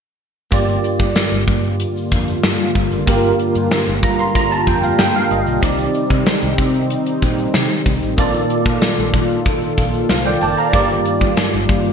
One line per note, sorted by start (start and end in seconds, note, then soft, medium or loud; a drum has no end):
0.51 0.76 G1 medium
0.51 1.44 G2 medium
0.51 5.59 D3 medium
0.51 8.14 G3 medium
0.51 3.03 A#3 medium
0.51 5.59 A#3 medium
0.51 3.03 F4 medium
0.51 5.59 F4 medium
0.51 3.03 G4 medium
0.51 3.04 D5 medium
0.51 kick loud
0.51 closed hi-hat medium
0.51 shaker medium
0.68 shaker medium
0.84 closed hi-hat medium
0.84 shaker soft
0.99 1.12 G2 loud
0.99 kick medium
0.99 shaker soft
1.15 snare loud
1.15 closed hi-hat medium
1.15 shaker medium
1.32 1.44 G1 medium
1.32 shaker soft
1.48 1.84 G2 medium
1.48 kick medium
1.48 closed hi-hat medium
1.48 shaker soft
1.63 shaker soft
1.80 closed hi-hat medium
1.80 shaker medium
1.96 shaker soft
2.12 2.36 F2 medium
2.12 kick medium
2.12 closed hi-hat medium
2.12 shaker soft
2.28 shaker soft
2.43 2.55 G2 medium
2.43 snare loud
2.43 closed hi-hat medium
2.43 shaker medium
2.60 shaker soft
2.75 2.87 G1 medium
2.75 kick medium
2.75 closed hi-hat medium
2.75 shaker soft
2.92 3.03 F#1 medium
2.92 shaker medium
3.06 3.31 G1 medium
3.06 3.99 G2 medium
3.06 5.58 A#3 medium
3.06 5.58 F4 medium
3.06 5.59 G4 medium
3.06 5.59 A#4 medium
3.06 kick loud
3.06 closed hi-hat medium
3.06 shaker medium
3.24 shaker medium
3.39 closed hi-hat medium
3.39 shaker soft
3.55 3.67 G2 medium
3.55 closed hi-hat soft
3.55 shaker soft
3.71 snare loud
3.71 closed hi-hat medium
3.71 shaker medium
3.87 3.99 G1 medium
3.87 shaker soft
4.03 4.39 G2 loud
4.03 4.18 A#5 medium
4.03 kick medium
4.03 closed hi-hat medium
4.03 shaker soft
4.19 4.34 C6 medium
4.19 shaker soft
4.35 4.50 A#5 medium
4.35 kick medium
4.35 closed hi-hat medium
4.35 shaker medium
4.51 4.66 A5 medium
4.51 shaker soft
4.67 4.91 F2 medium
4.67 4.82 G5 medium
4.67 kick medium
4.67 closed hi-hat medium
4.67 shaker soft
4.82 4.98 F5 medium
4.82 shaker soft
4.99 5.11 G2 medium
4.99 5.14 G5 medium
4.99 snare loud
4.99 closed hi-hat medium
4.99 shaker medium
5.15 5.30 F5 medium
5.15 shaker soft
5.30 5.43 G1 medium
5.30 5.60 D#5 medium
5.30 closed hi-hat medium
5.30 shaker soft
5.47 5.59 B1 medium
5.47 shaker medium
5.61 5.86 C2 medium
5.61 6.54 C3 medium
5.61 11.93 D#3 medium
5.61 8.13 C4 medium
5.61 8.15 C4 medium
5.61 8.14 D#4 medium
5.61 8.15 D#4 medium
5.61 8.14 G4 medium
5.61 8.15 D5 medium
5.61 kick loud
5.61 closed hi-hat medium
5.61 shaker medium
5.78 shaker medium
5.94 closed hi-hat medium
5.94 shaker soft
6.10 6.22 C3 loud
6.10 kick medium
6.10 closed hi-hat soft
6.10 shaker soft
6.26 snare loud
6.26 closed hi-hat medium
6.26 shaker medium
6.42 6.54 C2 medium
6.42 shaker soft
6.58 6.94 C3 loud
6.58 kick medium
6.58 closed hi-hat medium
6.58 shaker soft
6.74 shaker soft
6.90 closed hi-hat medium
6.90 shaker medium
7.06 closed hi-hat medium
7.06 shaker soft
7.22 7.46 A#2 medium
7.22 kick medium
7.22 closed hi-hat medium
7.22 shaker soft
7.38 shaker soft
7.54 7.66 C3 medium
7.54 snare loud
7.54 closed hi-hat medium
7.54 shaker medium
7.70 shaker soft
7.86 7.98 C2 medium
7.86 kick medium
7.86 closed hi-hat medium
7.86 shaker soft
8.02 8.14 A1 medium
8.02 shaker soft
8.17 8.42 A#1 medium
8.17 9.10 A#2 medium
8.17 10.69 A#3 medium
8.17 11.93 A#3 medium
8.17 10.69 F4 medium
8.17 10.71 F4 medium
8.17 10.71 A4 medium
8.17 10.69 A4 medium
8.17 10.06 D5 medium
8.17 kick loud
8.17 closed hi-hat medium
8.17 shaker medium
8.34 shaker medium
8.50 closed hi-hat medium
8.50 shaker soft
8.65 8.78 A#2 medium
8.65 kick medium
8.65 shaker soft
8.82 snare loud
8.82 closed hi-hat medium
8.82 shaker medium
8.98 9.10 A#1 medium
8.98 shaker soft
9.13 9.50 A#2 medium
9.13 kick medium
9.13 closed hi-hat medium
9.13 shaker soft
9.29 shaker soft
9.46 kick loud
9.46 closed hi-hat medium
9.46 shaker medium
9.62 shaker soft
9.78 10.02 A#1 medium
9.78 kick medium
9.78 closed hi-hat medium
9.78 shaker soft
9.93 shaker soft
10.09 10.33 C2 medium
10.09 10.25 C5 medium
10.09 10.25 F5 medium
10.09 snare loud
10.09 closed hi-hat medium
10.09 shaker medium
10.25 10.41 D5 medium
10.25 10.41 G5 medium
10.25 shaker soft
10.41 10.53 F#1 medium
10.41 10.57 D5 medium
10.41 10.57 A5 medium
10.41 open hi-hat medium
10.41 shaker soft
10.57 10.88 F5 medium
10.57 10.88 A#5 medium
10.57 shaker medium
10.72 10.97 G1 loud
10.72 11.65 G2 medium
10.72 11.93 G3 medium
10.72 11.93 A#3 medium
10.72 11.93 F4 medium
10.72 11.93 G4 medium
10.72 11.93 D5 medium
10.72 kick loud
10.72 closed hi-hat medium
10.72 shaker medium
10.89 shaker medium
11.05 closed hi-hat medium
11.05 shaker soft
11.20 11.33 G2 loud
11.20 kick medium
11.20 shaker soft
11.37 snare loud
11.37 closed hi-hat medium
11.37 shaker medium
11.53 11.65 G1 medium
11.53 shaker soft
11.69 11.93 G2 medium
11.69 kick medium
11.69 closed hi-hat medium
11.69 shaker soft
11.84 shaker soft